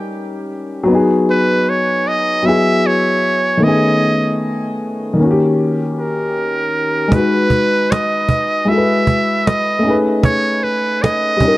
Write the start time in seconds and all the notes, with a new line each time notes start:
Already playing: G3 C#4 D#4 G4 A#4
0.83 F#3 B3
0.91 D#4 G#4
1.30 B4
1.69 C#5
2.08 D#5
2.43 F#3 B3 E4 E5
2.48 G#4
2.86 C#5
3.57 D#3 A3
3.63 B3 C#4 D#5
3.68 G#4
5.13 D#3 A#3
5.21 C#4 F#4
5.31 G4
5.99 A#4
7.08 G#3 D#4, cajon bass
7.15 F#4 B4
7.19 B4
7.50 cajon bass
7.92 D#5, cajon slap
8.29 cajon bass
8.65 G#3 E4 F#4 E5, cajon slap
8.70 A4
8.77 B4
9.07 cajon bass
9.47 D#5, cajon slap
9.79 A3 C#4
9.84 D#4 G#4, cajon slap
9.90 B4
10.23 C#5, cajon bass
10.63 B4, cajon slap
11.02 D#5, cajon slap
11.37 G3 C#4, cajon bass
11.44 D#4 A#4